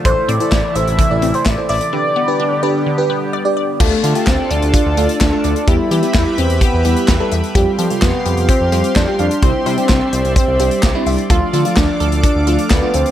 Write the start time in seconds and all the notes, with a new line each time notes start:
Already playing: A3
0.05 A1 C3 E3 E4 A4 C5, kick, closed hi-hat
0.28 A2 C4 D5, closed hi-hat
0.40 E4 A4 C5, closed hi-hat
0.52 A1 E4, kick, snare, clap
0.75 A1 E4 A4 C5 E5, closed hi-hat
0.87 A1, closed hi-hat
0.99 E3, kick, closed hi-hat
1.11 A1 E4 A4 D5
1.22 A1 C4, closed hi-hat
1.34 C5, closed hi-hat
1.46 A1 D5 E5, kick, snare, clap
1.58 E4 A4 C5
1.69 A1 D5 E5, open hi-hat
1.81 closed hi-hat
1.93 D3 G3 B3 D4 G4 B4
2.16 B3
2.28 D4 G4 B4
2.40 D4
2.63 D4 G4 B4 D5
2.86 D3
2.98 D4 G4 B4
3.10 B3
3.33 D5
3.45 D4 G4 D5
3.57 D5
3.80 D2 A3 D4 F4 A4 D5 A5, kick, crash
4.03 D3 A3 D4 F4 A4, closed hi-hat
4.15 A3 D4 F4 G4, closed hi-hat
4.27 D2 C4, kick, snare, clap
4.50 D2 D4 F4, closed hi-hat
4.62 D2, closed hi-hat
4.74 F4, kick, closed hi-hat
4.86 D2
4.97 D2 A3 D4 F4 A4, closed hi-hat
5.09 closed hi-hat
5.21 D2 D4 A4, kick, snare, clap
5.32 A3 D4 F4 A4
5.44 D2 D5, closed hi-hat
5.56 closed hi-hat
5.68 E2 G3 B3 E4 G4 B4 E5 B5, kick, closed hi-hat
5.91 E3 G3 B3 E4 G4, closed hi-hat
6.03 G3 B3 E4 G4, closed hi-hat
6.14 E2, kick, snare, clap
6.38 E2 C4 G4, closed hi-hat
6.50 E2, closed hi-hat
6.61 B3 G4, kick, closed hi-hat
6.73 E2
6.85 E2 G3 B3 E4 G4, closed hi-hat
6.97 closed hi-hat
7.08 E2 B4, kick, snare, clap
7.20 G3 B3 E4 A4
7.32 E2 E5, closed hi-hat
7.44 closed hi-hat
7.55 F2 G3 C4 F4 G4 F5 C6, kick, closed hi-hat
7.79 F3 G3 C4 F4 G4 A4, closed hi-hat
7.90 C3 G3 F4 G4, closed hi-hat
8.02 F2 B3, kick, snare, clap
8.25 F2 G4, closed hi-hat
8.37 F2, closed hi-hat
8.49 C4 G4, kick, closed hi-hat
8.61 F2
8.72 F2 G3 C4 F4 G4, closed hi-hat
8.84 closed hi-hat
8.96 F2 D4 C5, kick, snare, clap
9.08 G3 C4 F4 G4
9.19 F2 D4 F5, closed hi-hat
9.31 closed hi-hat
9.43 C2 G3 C4 D4 E4 C5 D5 E5, kick, closed hi-hat
9.66 C3 G3 C4 D4 E4 C5, closed hi-hat
9.78 G3 C4 D4 G4, closed hi-hat
9.89 C2, kick, snare, clap
10.13 C2 C5, closed hi-hat
10.25 C2, closed hi-hat
10.36 C4 C5, kick, closed hi-hat
10.48 C2
10.60 C2 G3 C4 D4 G4 C5, closed hi-hat
10.71 closed hi-hat
10.83 C2 D5, kick, snare, clap
10.95 G3 C4 D4 E4
11.06 C2 E5, open hi-hat
11.18 closed hi-hat
11.30 D2 F3 A3 D4 F4 A4 F5 D6, kick, closed hi-hat
11.53 D3 F3 A3 D4 F4 A4, closed hi-hat
11.65 F3 A3 D4 F4, closed hi-hat
11.77 D2 D4, kick, snare, clap
12.00 D2 A4, closed hi-hat
12.12 D2, closed hi-hat
12.24 D4 A4, kick, closed hi-hat
12.35 D2
12.47 D2 F3 A3 D4 F4 A4, closed hi-hat
12.59 closed hi-hat
12.70 D2 B3 D5, kick, snare, clap
12.83 F3 A3 D4 F4
12.94 D2 C4 F5, closed hi-hat
13.06 closed hi-hat